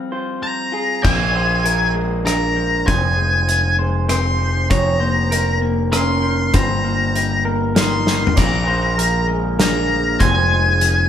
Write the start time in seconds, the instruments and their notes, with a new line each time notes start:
Already playing: clean electric guitar F3 G3 C4 F5
0.12 clean electric guitar F4 C5
0.43 lead electric guitar A#5
0.72 clean electric guitar F4 G#4
1.02 picked electric bass A#1, clean electric guitar A#2 D5, lead electric guitar G#5, kick, crash
1.34 clean electric guitar F3 C5
1.64 clean electric guitar F3 A#4, closed hi-hat
1.94 clean electric guitar G#3
2.25 clean electric guitar D4 A#4, lead electric guitar A#5, cross-stick, closed hi-hat
2.56 clean electric guitar F3
2.86 picked electric bass F1, clean electric guitar F3 C5, lead electric guitar G#5, kick, closed hi-hat
3.17 clean electric guitar G#3
3.47 clean electric guitar F3, closed hi-hat
3.79 clean electric guitar G#3 C5
4.08 clean electric guitar C4 C5, lead electric guitar C6, cross-stick, closed hi-hat
4.38 clean electric guitar F3
4.69 picked electric bass F1, clean electric guitar F3 C#5, lead electric guitar A#5, kick, closed hi-hat
5.00 clean electric guitar A#3 C5
5.31 clean electric guitar F3 A#4, closed hi-hat
5.61 clean electric guitar A#3
5.92 clean electric guitar C#4 A#4, lead electric guitar C6, cross-stick, closed hi-hat
6.22 clean electric guitar F3
6.53 picked electric bass G1, clean electric guitar G3 C5, lead electric guitar A#5, kick, closed hi-hat
6.84 clean electric guitar A#3
7.15 clean electric guitar G3, closed hi-hat
7.45 clean electric guitar A#3 A#4
7.75 clean electric guitar D#4 A#4, lead electric guitar C6, snare, closed hi-hat
8.07 clean electric guitar G3, snare
8.27 floor tom
8.36 picked electric bass A#1, clean electric guitar A#2 D5, ambient pad D3 G#3 A#3 F4 G#4, lead electric guitar A#5, kick, closed hi-hat, splash
8.67 clean electric guitar F3 C5
8.97 clean electric guitar F3 A#4, closed hi-hat
9.28 clean electric guitar G#3
9.59 clean electric guitar D4 A#4, lead electric guitar A#5, snare, closed hi-hat
9.88 clean electric guitar F3
10.20 picked electric bass F1, ambient pad C3 F3 F4 G#4, clean electric guitar F3 C5, lead electric guitar G#5, kick, closed hi-hat
10.50 clean electric guitar G#3
10.81 clean electric guitar F3, closed hi-hat